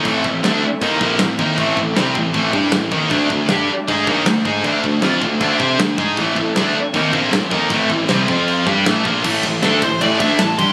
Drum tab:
CC |x-x-x-x-|x-x-x-x-|x-x-x-x-|x-x-x-x-|
RD |--------|--------|--------|--------|
SD |--o---o-|--o---o-|--o---o-|--o---o-|
BD |oo--oo-o|oo-ooo-o|oo--oo-o|oo-ooo-o|

CC |x-x-x-x-|x-x-x-x-|x-------|
RD |--------|--------|-xxxxxxx|
SD |--o---o-|--o---o-|--o---o-|
BD |oo--oo-o|oo-o-o-o|oo-ooo-o|